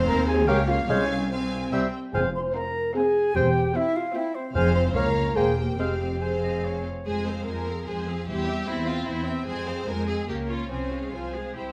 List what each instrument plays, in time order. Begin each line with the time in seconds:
Already playing: viola section C4, violin section C5 F5
0.07 cello section D#2, double bass section D#2, french horn section A#4, flute A#5
0.27 french horn section G#4, flute G#5
0.47 cello section C#2, double bass section C#2, viola section A#3, bassoon A#3, french horn section G4, violin section C#5 F5, clarinet C#5, oboe F5, flute G5
0.67 french horn section F4, flute F5
0.88 cello section C2, double bass section C2, timpani C3, bassoon G#3, viola section C4, french horn section C#4, clarinet C5, flute C#5, violin section F5 G#5, oboe F5
1.30 french horn section C4, viola section C4, flute C5, violin section F5 G#5
1.72 double bass section C2, cello section C2, bassoon G3, viola section C4, clarinet C5, violin section E5 G5, oboe E5
2.12 double bass section F1, cello section F2, timpani F2, bassoon C4, french horn section G#4, clarinet C5, oboe F5, flute G#5
2.33 french horn section C5, flute C6
2.54 viola section C4, french horn section A#4, violin section C5 F5, flute A#5
2.95 viola section C4, french horn section G#4, violin section C5 F5, flute G#5
3.35 double bass section E1, cello section E2, bassoon C4, french horn section G4, clarinet C5, flute G5, oboe G5
3.75 viola section C4, french horn section E4, violin section C5 G5, flute E5
3.95 french horn section F4, flute F5
4.15 viola section C4, french horn section E4, violin section C5 G5, flute E5
4.35 french horn section C4, flute C5
4.55 double bass section F1, timpani F2, cello section F2, bassoon C4, viola section C4, french horn section G#4, clarinet C5, violin section C5 F5, oboe F5, flute G#5
4.75 french horn section C5, flute C6
4.95 double bass section C#2, cello section C#2, bassoon A#3, viola section A#3, french horn section A#4, violin section C#5 F5, clarinet C#5, oboe F5, flute A#5
5.36 double bass section E1, cello section E2, bassoon A#3, viola section A#3, french horn section G#4, violin section C5 G5, clarinet C5, oboe G5, flute G#5
5.57 french horn section G4, flute G5
5.78 double bass section F1, cello section F2, bassoon G#3, viola section C4, french horn section G4, violin section C5 F5, clarinet C5, oboe F5, flute G5
6.21 viola section C4, french horn section G#4, violin section C5 F5, clarinet C5, flute G#5
6.43 clarinet D#5
6.65 clarinet C#5
7.06 double bass section F2, cello section G#3, viola section G#3 C5, violin section G#4 G#5
7.27 viola section C4 G#4, violin section C5 F5
7.46 double bass section F2, cello section F3, viola section G#3 C5, violin section A#4 G#5
7.67 viola section C4 G#4, violin section F5
7.87 double bass section F2, viola section G#3 C5, violin section G#4 G#5
8.08 viola section C4 G#4, violin section F5
8.28 double bass section E2, cello section G3, viola section E4 C5, violin section G4 E5
8.47 viola section C4 E5, violin section G5
8.67 double bass section E2, cello section C4, violin section E4 E5, viola section E4 C5
8.87 viola section C4 E5, violin section F4 G5
9.06 double bass section E2, viola section E4 C5, violin section E4 E5
9.26 viola section C4 E5, violin section C4 G5
9.46 double bass section F2, viola section G#3 C5, cello section C4, violin section G#4 G#5
9.66 viola section C4 G#4, violin section C5 F5
9.87 double bass section F2, cello section G#3, viola section G#3 C5, violin section A#4 G#5
10.08 viola section C4 G#4, violin section G#4 F5
10.28 double bass section C#2, cello section A#3, viola section A#3 A#4, violin section G4 C#5
10.49 viola section C#4 C#5, violin section F4 F5
10.70 double bass section C2, viola section F3 C5, cello section C4, violin section C#4 G#5
10.91 viola section G#3 G#4, violin section F5
11.13 double bass section C2, viola section F3 C5, violin section C4 G#5, cello section F4
11.34 viola section G#3 G#4, cello section G#4, violin section F5
11.55 double bass section C2, viola section E4 C5, cello section G4, violin section G5